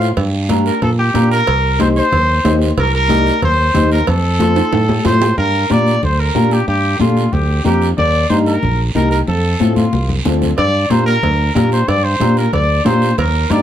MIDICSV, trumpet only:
0, 0, Header, 1, 2, 480
1, 0, Start_track
1, 0, Key_signature, -2, "minor"
1, 0, Tempo, 325203
1, 260, Time_signature, 4, 2, 24, 8
1, 20105, End_track
2, 0, Start_track
2, 0, Title_t, "Trumpet"
2, 0, Program_c, 0, 56
2, 977, Note_on_c, 0, 70, 89
2, 1201, Note_off_c, 0, 70, 0
2, 1220, Note_on_c, 0, 69, 83
2, 1328, Note_off_c, 0, 69, 0
2, 1459, Note_on_c, 0, 67, 95
2, 1905, Note_off_c, 0, 67, 0
2, 1939, Note_on_c, 0, 70, 108
2, 2608, Note_off_c, 0, 70, 0
2, 2669, Note_on_c, 0, 72, 94
2, 2774, Note_off_c, 0, 72, 0
2, 2912, Note_on_c, 0, 72, 110
2, 3806, Note_off_c, 0, 72, 0
2, 4114, Note_on_c, 0, 70, 103
2, 4329, Note_off_c, 0, 70, 0
2, 4353, Note_on_c, 0, 70, 108
2, 5015, Note_off_c, 0, 70, 0
2, 5077, Note_on_c, 0, 72, 108
2, 5737, Note_off_c, 0, 72, 0
2, 5787, Note_on_c, 0, 70, 93
2, 6005, Note_off_c, 0, 70, 0
2, 6036, Note_on_c, 0, 69, 95
2, 7407, Note_off_c, 0, 69, 0
2, 7475, Note_on_c, 0, 72, 103
2, 7913, Note_off_c, 0, 72, 0
2, 7936, Note_on_c, 0, 70, 102
2, 8432, Note_on_c, 0, 74, 97
2, 8454, Note_off_c, 0, 70, 0
2, 8904, Note_off_c, 0, 74, 0
2, 8920, Note_on_c, 0, 72, 97
2, 9145, Note_on_c, 0, 70, 89
2, 9168, Note_off_c, 0, 72, 0
2, 9633, Note_on_c, 0, 67, 89
2, 9655, Note_off_c, 0, 70, 0
2, 9857, Note_off_c, 0, 67, 0
2, 9866, Note_on_c, 0, 67, 96
2, 10308, Note_off_c, 0, 67, 0
2, 10339, Note_on_c, 0, 65, 84
2, 10814, Note_on_c, 0, 67, 85
2, 10836, Note_off_c, 0, 65, 0
2, 11287, Note_off_c, 0, 67, 0
2, 11296, Note_on_c, 0, 67, 91
2, 11632, Note_off_c, 0, 67, 0
2, 11773, Note_on_c, 0, 74, 111
2, 12222, Note_off_c, 0, 74, 0
2, 12245, Note_on_c, 0, 72, 91
2, 12356, Note_off_c, 0, 72, 0
2, 12485, Note_on_c, 0, 70, 96
2, 13015, Note_off_c, 0, 70, 0
2, 13218, Note_on_c, 0, 70, 88
2, 13438, Note_off_c, 0, 70, 0
2, 13447, Note_on_c, 0, 70, 87
2, 13558, Note_off_c, 0, 70, 0
2, 13698, Note_on_c, 0, 69, 92
2, 14368, Note_off_c, 0, 69, 0
2, 14406, Note_on_c, 0, 65, 73
2, 14935, Note_off_c, 0, 65, 0
2, 15613, Note_on_c, 0, 74, 115
2, 16090, Note_on_c, 0, 72, 96
2, 16112, Note_off_c, 0, 74, 0
2, 16317, Note_off_c, 0, 72, 0
2, 16326, Note_on_c, 0, 70, 102
2, 17002, Note_off_c, 0, 70, 0
2, 17051, Note_on_c, 0, 70, 89
2, 17278, Note_off_c, 0, 70, 0
2, 17307, Note_on_c, 0, 72, 96
2, 17539, Note_on_c, 0, 74, 105
2, 17561, Note_off_c, 0, 72, 0
2, 17769, Note_on_c, 0, 72, 99
2, 17792, Note_off_c, 0, 74, 0
2, 18269, Note_on_c, 0, 70, 88
2, 18291, Note_off_c, 0, 72, 0
2, 18490, Note_off_c, 0, 70, 0
2, 18498, Note_on_c, 0, 74, 94
2, 18946, Note_off_c, 0, 74, 0
2, 18963, Note_on_c, 0, 72, 98
2, 19417, Note_off_c, 0, 72, 0
2, 19451, Note_on_c, 0, 70, 90
2, 19936, Note_on_c, 0, 74, 97
2, 19958, Note_off_c, 0, 70, 0
2, 20105, Note_off_c, 0, 74, 0
2, 20105, End_track
0, 0, End_of_file